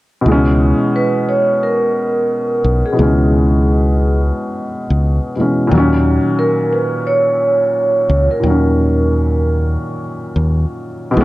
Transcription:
0.21 upright piano B2 E3
0.26 fingered electric bass C#2, upright piano G#3
0.32 upright piano C#4
0.96 vibraphone B4
1.29 vibraphone C#5
1.63 vibraphone A#4
2.64 fingered electric bass B1
2.86 vibraphone G#4
2.93 upright piano B2 E3
2.99 fingered electric bass C#2, upright piano G#3 C#4
4.90 fingered electric bass C#2
5.36 upright piano B2 E3 G#3
5.41 upright piano C#4
5.67 upright piano A#2 D#3
5.71 fingered electric bass D#2, upright piano F#3
5.78 upright piano C#4
6.39 vibraphone A#4
6.73 vibraphone B4
7.07 vibraphone C#5
8.10 fingered electric bass C#2
8.31 vibraphone A#4
8.40 fingered electric bass D#2, upright piano A#2 D#3
8.46 upright piano F#3 C#4
10.36 fingered electric bass D#2
11.11 upright piano B2 E3
11.17 fingered electric bass C#2, upright piano G#3 C#4

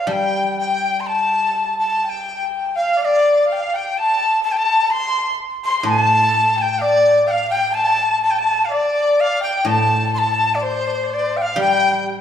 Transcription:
0.07 guzheng G3, erhu G5, dizi A5
0.12 dizi G5
0.56 erhu G5, dizi G5
1.00 dizi C6
1.07 dizi A5, erhu A5
1.79 dizi A5
1.98 erhu A5
2.04 erhu G5, dizi A5
2.09 dizi G5
2.76 erhu F5, dizi F5
2.96 erhu D5
3.01 dizi F5
3.05 dizi D5
3.47 erhu F5, dizi F5
3.52 erhu G5
3.60 erhu F5
3.74 erhu G5, dizi G5
3.98 dizi A5, erhu A5
4.44 dizi A5, erhu A5
4.52 dizi G5
4.57 dizi A5
4.91 dizi C6, erhu C6
5.64 dizi C6, erhu C6
5.80 guzheng A2, dizi C6
5.87 dizi G#5, erhu A5
6.00 dizi A5
6.52 erhu A5
6.57 erhu G5, dizi A5
6.62 dizi G5
6.79 erhu D5, dizi D5 F5
7.26 erhu F5, dizi G5
7.31 dizi F5
7.50 erhu G5, dizi G5
7.73 erhu A5, dizi A5
8.21 erhu A5, dizi A5
8.31 dizi G5
8.39 dizi A5
8.65 dizi F5
8.71 erhu D5, dizi D5
9.20 dizi F5
9.41 erhu G5, dizi G5
9.65 guzheng A2, erhu A5, dizi A5
10.14 dizi C6
10.19 dizi A5
10.55 dizi D5
10.62 erhu C5, dizi C5
10.71 erhu D5
10.79 erhu C5
10.87 erhu D5
10.95 erhu C5
11.03 erhu D5
11.10 erhu C5, dizi D5
11.36 erhu F5, dizi G5
11.42 dizi F5
11.56 guzheng G3
11.60 erhu G5, dizi G5

